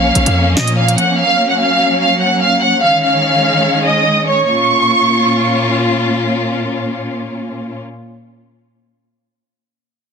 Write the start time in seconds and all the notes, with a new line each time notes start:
Already playing: A#1 F3 A#3 C#4 F5 F6
0.15 A#1, closed hi-hat
0.26 F2, closed hi-hat
0.57 A#2 D#5 D#6, snare
0.67 closed hi-hat
0.78 F5 F6
0.88 closed hi-hat
0.98 F#5 F#6, closed hi-hat
1.18 F#3 F5 F6
1.50 F#5 F#6
1.60 F5 F6
2.01 F5 F6
2.21 F#5 F#6
2.41 F5 F6
2.62 F#5 F#6
2.83 D#3 G#3 C#4 F5 F6
3.03 F5 F6
3.85 D#5 D#6
4.27 C#5 C#6
4.47 A#2 A#3 C#4 F4 C#6